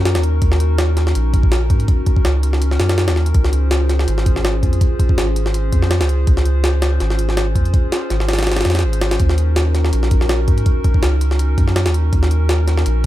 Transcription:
Already playing: sub bass F#2, ambient pad C#4 D#4 F#4 A#4
0.05 snare, closed hi-hat
0.15 sub bass D#2, snare, closed hi-hat
0.23 closed hi-hat
0.41 sub bass D#2, ambient pad C#4 D#4 F#4 A#4, kick, closed hi-hat
0.52 snare
0.60 closed hi-hat
0.78 snare, closed hi-hat
0.97 ambient pad C#4 D#4 F#4 A#4, snare, closed hi-hat
1.07 snare
1.15 sub bass A#1, closed hi-hat
1.33 kick, closed hi-hat
1.43 kick
1.52 snare, closed hi-hat
1.70 sub bass G#2, kick, closed hi-hat
1.80 closed hi-hat
1.88 ambient pad C#4 D#4 F#4 A#4, kick, closed hi-hat
2.06 kick, closed hi-hat
2.16 kick
2.25 sub bass C#2, snare, closed hi-hat
2.43 ambient pad C#4 D#4 F#4 A#4, closed hi-hat
2.53 snare
2.62 closed hi-hat
2.71 snare
2.80 sub bass F#2, snare, closed hi-hat
2.89 snare, closed hi-hat
2.98 snare, closed hi-hat
3.08 sub bass D#2, snare, closed hi-hat
3.16 snare
3.26 closed hi-hat
3.34 sub bass C#2, ambient pad C#4 F4 G#4 C5, kick, closed hi-hat
3.44 snare
3.53 closed hi-hat
3.71 snare, closed hi-hat
3.89 ambient pad C#4 F4 G#4 C5, snare, closed hi-hat
3.99 snare
4.08 sub bass G#1, closed hi-hat
4.18 snare
4.26 kick, closed hi-hat
4.36 snare
4.45 snare, closed hi-hat
4.63 sub bass F2, kick, closed hi-hat
4.73 closed hi-hat
4.81 ambient pad C#4 F4 G#4 C5, kick, closed hi-hat
4.99 kick, closed hi-hat
5.09 kick
5.18 sub bass G#1, snare, closed hi-hat
5.35 ambient pad C#4 F4 G#4 C5, closed hi-hat
5.46 snare
5.54 closed hi-hat
5.72 sub bass F2, kick, closed hi-hat
5.83 snare
5.91 snare, closed hi-hat
6.00 sub bass C#2, snare, closed hi-hat
6.09 closed hi-hat
6.27 sub bass C#2, ambient pad C#4 F4 G#4 C5, kick, closed hi-hat
6.37 snare
6.45 closed hi-hat
6.64 snare, closed hi-hat
6.82 ambient pad C#4 F4 G#4 C5, snare, closed hi-hat
7.00 sub bass G#1, snare, closed hi-hat
7.10 snare
7.19 closed hi-hat
7.29 snare
7.37 snare, closed hi-hat
7.55 sub bass F2, kick, closed hi-hat
7.65 closed hi-hat
7.73 ambient pad C#4 F4 G#4 C5, kick, closed hi-hat
7.92 snare, closed hi-hat
8.10 sub bass G#1, snare, closed hi-hat
8.20 snare
8.28 ambient pad C#4 F4 G#4 C5, snare, closed hi-hat
8.33 snare, closed hi-hat
8.39 snare, closed hi-hat
8.43 snare, closed hi-hat
8.47 snare, closed hi-hat
8.52 snare, closed hi-hat
8.56 snare, closed hi-hat
8.61 snare, closed hi-hat
8.65 sub bass F2, snare, closed hi-hat
8.70 snare, closed hi-hat
8.75 snare, closed hi-hat
8.79 snare, closed hi-hat
8.83 sub bass G#1
8.93 closed hi-hat
9.01 snare, closed hi-hat
9.11 snare, closed hi-hat
9.20 sub bass D#2, ambient pad C#4 D#4 F#4 A#4, kick, closed hi-hat
9.29 snare
9.38 closed hi-hat
9.56 snare, closed hi-hat
9.75 ambient pad C#4 D#4 F#4 A#4, snare, closed hi-hat
9.85 snare
9.93 sub bass A#1, closed hi-hat
10.03 snare
10.11 kick, closed hi-hat
10.21 snare
10.29 snare, closed hi-hat
10.48 sub bass G#2, kick, closed hi-hat
10.58 closed hi-hat
10.66 ambient pad C#4 D#4 F#4 A#4, kick, closed hi-hat
10.84 kick, closed hi-hat
10.94 kick
11.03 sub bass C#2, snare, closed hi-hat
11.21 ambient pad C#4 D#4 F#4 A#4, closed hi-hat
11.31 snare
11.39 closed hi-hat
11.58 sub bass F#2, kick, closed hi-hat
11.68 snare
11.76 snare, closed hi-hat
11.86 sub bass D#2, snare, closed hi-hat
11.94 closed hi-hat
12.13 sub bass D#2, ambient pad C#4 D#4 F#4 A#4, kick, closed hi-hat
12.23 snare
12.31 closed hi-hat
12.49 snare, closed hi-hat
12.68 ambient pad C#4 D#4 F#4 A#4, snare, closed hi-hat
12.78 snare
12.86 sub bass A#1, closed hi-hat

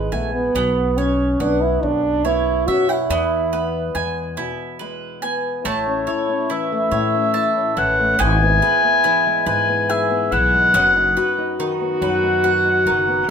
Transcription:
Already playing: steel-string acoustic guitar G#2 E3 G#3 B3 G#4, french horn G#3, mandolin B3 E4 B4 G#5
0.12 upright bass A#1, french horn A3, steel-string acoustic guitar B3, mandolin G#5
0.35 french horn B3
0.55 upright bass B1, steel-string acoustic guitar B2, mandolin B3
0.98 steel-string acoustic guitar C#4, french horn C#4, mandolin C#5
1.40 upright bass B1, steel-string acoustic guitar B3, french horn D4, mandolin F#5
1.62 french horn E4
1.82 upright bass B1, steel-string acoustic guitar F#2, french horn D4
2.25 steel-string acoustic guitar B3, french horn E4, mandolin C#5
2.67 upright bass B2, steel-string acoustic guitar C#4, french horn F#4, mandolin E5
2.89 french horn E4, mandolin F#5
3.09 steel-string acoustic guitar E2, upright bass E2, mandolin B3
3.53 steel-string acoustic guitar B3, mandolin B4
3.95 upright bass E2, steel-string acoustic guitar G#3, mandolin G#5
4.37 steel-string acoustic guitar B2, mandolin E4
4.79 steel-string acoustic guitar G#3, mandolin B4
5.22 steel-string acoustic guitar B3, mandolin G#5
5.63 upright bass A1, steel-string acoustic guitar A2, mandolin A3 A5, french horn E4, clarinet C#5
5.87 steel-string acoustic guitar C#4
6.07 steel-string acoustic guitar E4, mandolin C#5
6.29 steel-string acoustic guitar C#4
6.50 steel-string acoustic guitar E3, mandolin E4, clarinet E5
6.72 steel-string acoustic guitar A3
6.91 upright bass A2, steel-string acoustic guitar A2, mandolin C#5
7.14 steel-string acoustic guitar C#4
7.34 steel-string acoustic guitar E4, mandolin A5
7.57 steel-string acoustic guitar C#4
7.77 upright bass A1, steel-string acoustic guitar E3, french horn C#4, mandolin E4, clarinet F#5
8.00 steel-string acoustic guitar A3
8.19 upright bass G#1, mandolin B3 G#5, french horn E4, clarinet G#5
8.42 steel-string acoustic guitar B3
8.62 steel-string acoustic guitar G#4, mandolin B4
8.85 steel-string acoustic guitar B3
9.04 steel-string acoustic guitar E3, mandolin E4
9.27 steel-string acoustic guitar G#3
9.46 upright bass G#2, steel-string acoustic guitar G#2, mandolin B4, clarinet G#5
9.69 steel-string acoustic guitar B3
9.90 steel-string acoustic guitar G#4, clarinet E5, mandolin G#5
10.10 steel-string acoustic guitar B3
10.31 upright bass B1, steel-string acoustic guitar E3, mandolin E4, clarinet F#5
10.54 steel-string acoustic guitar G#3
10.74 upright bass F#1, steel-string acoustic guitar F#2, mandolin B3 F#5, french horn F#4
10.96 steel-string acoustic guitar D#4
11.17 steel-string acoustic guitar F#4, mandolin B4
11.38 steel-string acoustic guitar D#4
11.59 steel-string acoustic guitar D#3, mandolin D#4
11.81 steel-string acoustic guitar B3
12.01 steel-string acoustic guitar F#2, upright bass F#2, mandolin B4, clarinet F#5
12.23 steel-string acoustic guitar D#4
12.44 steel-string acoustic guitar F#4, mandolin F#5
12.65 steel-string acoustic guitar D#4
12.86 upright bass F#1, steel-string acoustic guitar D#3, mandolin D#4
13.08 steel-string acoustic guitar B3

